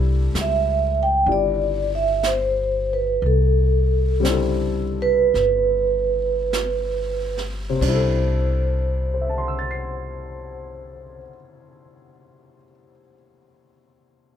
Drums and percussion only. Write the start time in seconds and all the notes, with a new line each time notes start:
0.35 snare, hi-hat pedal
1.28 brush sweep
2.23 snare, hi-hat pedal
3.22 brush sweep
4.25 snare, hi-hat pedal
5.35 brush sweep, snare
6.53 snare, hi-hat pedal
7.38 snare
7.81 kick, crash